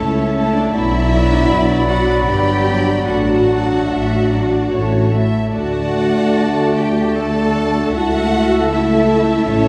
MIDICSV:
0, 0, Header, 1, 10, 480
1, 0, Start_track
1, 0, Key_signature, 2, "major"
1, 0, Tempo, 775194
1, 454, Time_signature, 3, 2, 24, 8
1, 1904, Tempo, 827586
1, 3344, Tempo, 804290
1, 4304, Tempo, 768246
1, 5875, End_track
2, 0, Start_track
2, 0, Title_t, "Flute section"
2, 0, Program_c, 0, 73
2, 0, Note_on_c, 0, 81, 56
2, 429, Note_off_c, 0, 81, 0
2, 464, Note_on_c, 0, 83, 70
2, 1752, Note_off_c, 0, 83, 0
2, 1912, Note_on_c, 0, 81, 68
2, 4769, Note_off_c, 0, 81, 0
2, 4791, Note_on_c, 0, 81, 69
2, 5875, Note_off_c, 0, 81, 0
2, 5875, End_track
3, 0, Start_track
3, 0, Title_t, "Violin section"
3, 0, Program_c, 1, 48
3, 0, Note_on_c, 1, 73, 70
3, 336, Note_off_c, 1, 73, 0
3, 340, Note_on_c, 1, 74, 64
3, 449, Note_on_c, 1, 76, 101
3, 456, Note_off_c, 1, 74, 0
3, 1152, Note_off_c, 1, 76, 0
3, 1168, Note_on_c, 1, 78, 66
3, 1406, Note_off_c, 1, 78, 0
3, 1409, Note_on_c, 1, 79, 83
3, 1901, Note_on_c, 1, 78, 77
3, 1904, Note_off_c, 1, 79, 0
3, 3077, Note_off_c, 1, 78, 0
3, 3339, Note_on_c, 1, 78, 81
3, 4041, Note_off_c, 1, 78, 0
3, 4067, Note_on_c, 1, 79, 63
3, 4304, Note_off_c, 1, 79, 0
3, 4306, Note_on_c, 1, 81, 73
3, 4785, Note_on_c, 1, 78, 101
3, 4791, Note_off_c, 1, 81, 0
3, 5262, Note_off_c, 1, 78, 0
3, 5274, Note_on_c, 1, 76, 77
3, 5739, Note_off_c, 1, 76, 0
3, 5747, Note_on_c, 1, 73, 89
3, 5875, Note_off_c, 1, 73, 0
3, 5875, End_track
4, 0, Start_track
4, 0, Title_t, "Violin section"
4, 0, Program_c, 2, 48
4, 0, Note_on_c, 2, 69, 58
4, 0, Note_on_c, 2, 81, 58
4, 205, Note_off_c, 2, 69, 0
4, 206, Note_off_c, 2, 81, 0
4, 222, Note_on_c, 2, 81, 60
4, 223, Note_on_c, 2, 69, 59
4, 451, Note_off_c, 2, 81, 0
4, 452, Note_off_c, 2, 69, 0
4, 691, Note_on_c, 2, 74, 61
4, 692, Note_on_c, 2, 83, 65
4, 1160, Note_off_c, 2, 74, 0
4, 1160, Note_off_c, 2, 83, 0
4, 1167, Note_on_c, 2, 74, 63
4, 1170, Note_on_c, 2, 83, 69
4, 1396, Note_off_c, 2, 74, 0
4, 1401, Note_off_c, 2, 83, 0
4, 1404, Note_on_c, 2, 74, 58
4, 1408, Note_on_c, 2, 83, 56
4, 1648, Note_off_c, 2, 74, 0
4, 1650, Note_off_c, 2, 83, 0
4, 1654, Note_on_c, 2, 74, 56
4, 1663, Note_on_c, 2, 83, 64
4, 1899, Note_off_c, 2, 74, 0
4, 1904, Note_off_c, 2, 83, 0
4, 2142, Note_on_c, 2, 81, 51
4, 2148, Note_on_c, 2, 74, 52
4, 2332, Note_off_c, 2, 81, 0
4, 2335, Note_off_c, 2, 74, 0
4, 2368, Note_on_c, 2, 76, 70
4, 2599, Note_off_c, 2, 76, 0
4, 2609, Note_on_c, 2, 74, 59
4, 2850, Note_on_c, 2, 73, 63
4, 2854, Note_off_c, 2, 74, 0
4, 3097, Note_off_c, 2, 73, 0
4, 3099, Note_on_c, 2, 76, 69
4, 3338, Note_on_c, 2, 74, 64
4, 3340, Note_on_c, 2, 81, 66
4, 3343, Note_off_c, 2, 76, 0
4, 4278, Note_off_c, 2, 74, 0
4, 4279, Note_off_c, 2, 81, 0
4, 4301, Note_on_c, 2, 74, 59
4, 4305, Note_on_c, 2, 81, 60
4, 4766, Note_off_c, 2, 81, 0
4, 4774, Note_on_c, 2, 81, 65
4, 4777, Note_on_c, 2, 76, 67
4, 4779, Note_off_c, 2, 74, 0
4, 5256, Note_off_c, 2, 81, 0
4, 5258, Note_off_c, 2, 76, 0
4, 5268, Note_on_c, 2, 81, 66
4, 5270, Note_on_c, 2, 76, 66
4, 5728, Note_off_c, 2, 76, 0
4, 5730, Note_off_c, 2, 81, 0
4, 5735, Note_on_c, 2, 76, 78
4, 5738, Note_on_c, 2, 81, 70
4, 5875, Note_off_c, 2, 76, 0
4, 5875, Note_off_c, 2, 81, 0
4, 5875, End_track
5, 0, Start_track
5, 0, Title_t, "Clarinet"
5, 0, Program_c, 3, 71
5, 0, Note_on_c, 3, 76, 55
5, 430, Note_off_c, 3, 76, 0
5, 456, Note_on_c, 3, 74, 77
5, 2671, Note_off_c, 3, 74, 0
5, 2849, Note_on_c, 3, 73, 52
5, 3122, Note_off_c, 3, 73, 0
5, 3344, Note_on_c, 3, 74, 57
5, 4765, Note_off_c, 3, 74, 0
5, 4788, Note_on_c, 3, 76, 71
5, 5875, Note_off_c, 3, 76, 0
5, 5875, End_track
6, 0, Start_track
6, 0, Title_t, "Cello section"
6, 0, Program_c, 4, 48
6, 0, Note_on_c, 4, 61, 79
6, 339, Note_on_c, 4, 62, 84
6, 340, Note_off_c, 4, 61, 0
6, 454, Note_on_c, 4, 64, 102
6, 456, Note_off_c, 4, 62, 0
6, 1155, Note_off_c, 4, 64, 0
6, 1171, Note_on_c, 4, 66, 79
6, 1407, Note_on_c, 4, 67, 93
6, 1412, Note_off_c, 4, 66, 0
6, 1897, Note_on_c, 4, 66, 84
6, 1903, Note_off_c, 4, 67, 0
6, 3075, Note_off_c, 4, 66, 0
6, 3340, Note_on_c, 4, 66, 83
6, 4042, Note_off_c, 4, 66, 0
6, 4068, Note_on_c, 4, 67, 74
6, 4302, Note_on_c, 4, 69, 85
6, 4305, Note_off_c, 4, 67, 0
6, 4789, Note_off_c, 4, 69, 0
6, 4792, Note_on_c, 4, 66, 92
6, 5265, Note_off_c, 4, 66, 0
6, 5280, Note_on_c, 4, 64, 87
6, 5748, Note_on_c, 4, 61, 102
6, 5752, Note_off_c, 4, 64, 0
6, 5875, Note_off_c, 4, 61, 0
6, 5875, End_track
7, 0, Start_track
7, 0, Title_t, "French horn section"
7, 0, Program_c, 5, 60
7, 460, Note_on_c, 5, 62, 64
7, 462, Note_on_c, 5, 59, 66
7, 1390, Note_off_c, 5, 59, 0
7, 1390, Note_off_c, 5, 62, 0
7, 1408, Note_on_c, 5, 59, 70
7, 1409, Note_on_c, 5, 62, 60
7, 1894, Note_off_c, 5, 59, 0
7, 1894, Note_off_c, 5, 62, 0
7, 1903, Note_on_c, 5, 57, 65
7, 1907, Note_on_c, 5, 62, 57
7, 2843, Note_off_c, 5, 62, 0
7, 2853, Note_off_c, 5, 57, 0
7, 2860, Note_on_c, 5, 57, 56
7, 2862, Note_on_c, 5, 61, 55
7, 3142, Note_off_c, 5, 57, 0
7, 3143, Note_off_c, 5, 61, 0
7, 3348, Note_on_c, 5, 62, 52
7, 3350, Note_on_c, 5, 57, 51
7, 4283, Note_off_c, 5, 62, 0
7, 4284, Note_off_c, 5, 57, 0
7, 4304, Note_on_c, 5, 57, 60
7, 4307, Note_on_c, 5, 62, 53
7, 4780, Note_off_c, 5, 57, 0
7, 4782, Note_off_c, 5, 62, 0
7, 4786, Note_on_c, 5, 64, 64
7, 4787, Note_on_c, 5, 57, 58
7, 5260, Note_off_c, 5, 64, 0
7, 5261, Note_off_c, 5, 57, 0
7, 5267, Note_on_c, 5, 64, 64
7, 5269, Note_on_c, 5, 57, 63
7, 5736, Note_off_c, 5, 64, 0
7, 5737, Note_off_c, 5, 57, 0
7, 5744, Note_on_c, 5, 57, 67
7, 5746, Note_on_c, 5, 64, 71
7, 5875, Note_off_c, 5, 57, 0
7, 5875, Note_off_c, 5, 64, 0
7, 5875, End_track
8, 0, Start_track
8, 0, Title_t, "Viola section"
8, 0, Program_c, 6, 48
8, 0, Note_on_c, 6, 57, 50
8, 0, Note_on_c, 6, 64, 50
8, 211, Note_off_c, 6, 57, 0
8, 211, Note_off_c, 6, 64, 0
8, 217, Note_on_c, 6, 64, 58
8, 221, Note_on_c, 6, 57, 57
8, 449, Note_off_c, 6, 64, 0
8, 450, Note_off_c, 6, 57, 0
8, 685, Note_on_c, 6, 54, 57
8, 688, Note_on_c, 6, 62, 54
8, 1157, Note_off_c, 6, 54, 0
8, 1158, Note_off_c, 6, 62, 0
8, 1168, Note_on_c, 6, 54, 54
8, 1168, Note_on_c, 6, 62, 54
8, 1399, Note_off_c, 6, 54, 0
8, 1402, Note_off_c, 6, 62, 0
8, 1406, Note_on_c, 6, 54, 57
8, 1410, Note_on_c, 6, 62, 61
8, 1643, Note_off_c, 6, 54, 0
8, 1647, Note_off_c, 6, 62, 0
8, 1651, Note_on_c, 6, 54, 55
8, 1654, Note_on_c, 6, 62, 58
8, 1897, Note_off_c, 6, 54, 0
8, 1899, Note_off_c, 6, 62, 0
8, 2145, Note_on_c, 6, 54, 54
8, 2145, Note_on_c, 6, 62, 51
8, 2615, Note_off_c, 6, 62, 0
8, 2616, Note_off_c, 6, 54, 0
8, 2623, Note_on_c, 6, 54, 47
8, 2624, Note_on_c, 6, 62, 45
8, 2854, Note_on_c, 6, 57, 50
8, 2856, Note_off_c, 6, 54, 0
8, 2856, Note_off_c, 6, 62, 0
8, 2857, Note_on_c, 6, 64, 48
8, 3087, Note_off_c, 6, 57, 0
8, 3089, Note_off_c, 6, 64, 0
8, 3094, Note_on_c, 6, 57, 47
8, 3096, Note_on_c, 6, 64, 44
8, 3325, Note_off_c, 6, 57, 0
8, 3332, Note_on_c, 6, 57, 52
8, 3334, Note_on_c, 6, 66, 62
8, 3337, Note_off_c, 6, 64, 0
8, 4275, Note_off_c, 6, 57, 0
8, 4275, Note_off_c, 6, 66, 0
8, 4302, Note_on_c, 6, 57, 61
8, 4304, Note_on_c, 6, 66, 60
8, 4779, Note_off_c, 6, 57, 0
8, 4780, Note_off_c, 6, 66, 0
8, 4795, Note_on_c, 6, 69, 63
8, 4796, Note_on_c, 6, 57, 61
8, 5264, Note_off_c, 6, 57, 0
8, 5265, Note_off_c, 6, 69, 0
8, 5271, Note_on_c, 6, 57, 77
8, 5272, Note_on_c, 6, 69, 74
8, 5738, Note_off_c, 6, 57, 0
8, 5738, Note_off_c, 6, 69, 0
8, 5747, Note_on_c, 6, 69, 70
8, 5750, Note_on_c, 6, 57, 75
8, 5875, Note_off_c, 6, 57, 0
8, 5875, Note_off_c, 6, 69, 0
8, 5875, End_track
9, 0, Start_track
9, 0, Title_t, "Bassoon"
9, 0, Program_c, 7, 70
9, 0, Note_on_c, 7, 57, 50
9, 429, Note_off_c, 7, 57, 0
9, 455, Note_on_c, 7, 54, 65
9, 2671, Note_off_c, 7, 54, 0
9, 2865, Note_on_c, 7, 57, 59
9, 4767, Note_off_c, 7, 57, 0
9, 4791, Note_on_c, 7, 57, 59
9, 5875, Note_off_c, 7, 57, 0
9, 5875, End_track
10, 0, Start_track
10, 0, Title_t, "Double bass section"
10, 0, Program_c, 8, 48
10, 0, Note_on_c, 8, 37, 66
10, 400, Note_off_c, 8, 37, 0
10, 460, Note_on_c, 8, 35, 86
10, 876, Note_off_c, 8, 35, 0
10, 928, Note_on_c, 8, 35, 84
10, 1353, Note_off_c, 8, 35, 0
10, 1408, Note_on_c, 8, 31, 70
10, 1845, Note_off_c, 8, 31, 0
10, 1905, Note_on_c, 8, 33, 72
10, 2328, Note_off_c, 8, 33, 0
10, 2381, Note_on_c, 8, 33, 70
10, 2803, Note_off_c, 8, 33, 0
10, 2862, Note_on_c, 8, 33, 56
10, 3288, Note_off_c, 8, 33, 0
10, 3341, Note_on_c, 8, 38, 67
10, 4763, Note_off_c, 8, 38, 0
10, 4789, Note_on_c, 8, 37, 65
10, 5729, Note_off_c, 8, 37, 0
10, 5753, Note_on_c, 8, 33, 63
10, 5875, Note_off_c, 8, 33, 0
10, 5875, End_track
0, 0, End_of_file